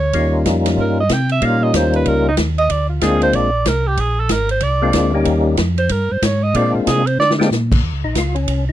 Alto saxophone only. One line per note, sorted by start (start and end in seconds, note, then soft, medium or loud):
0.00 0.35 C#5 loud
0.80 0.98 A#4 medium
1.00 1.14 D#5 loud
1.13 1.31 G5 medium
1.32 1.47 E5 medium
1.45 1.65 F5 medium
1.63 1.77 D#5 medium
1.76 1.95 C5 loud
1.96 2.10 B4 medium
2.08 2.27 A#4 loud
2.28 2.35 D#4 medium
2.59 2.73 D#5 loud
2.71 2.89 D5 medium
2.90 3.04 F4 medium
3.03 3.22 G#4 medium
3.23 3.36 C5 loud
3.35 3.69 D5 loud
3.68 3.89 A#4 medium
3.87 4.01 G4 medium
4.00 4.21 G#4 medium
4.20 4.33 A4 medium
4.31 4.50 A#4 medium
4.51 4.65 C5 medium
4.63 5.15 D5 loud
5.78 5.93 C5 loud
5.92 6.13 A#4 medium
6.12 6.26 C5 medium
6.25 6.44 C#5 medium
6.43 6.57 D#5 loud
6.56 6.74 D5 loud
6.75 6.89 F4 medium
6.87 7.08 G#4 loud
7.07 7.19 C5 loud
7.19 7.31 D5 loud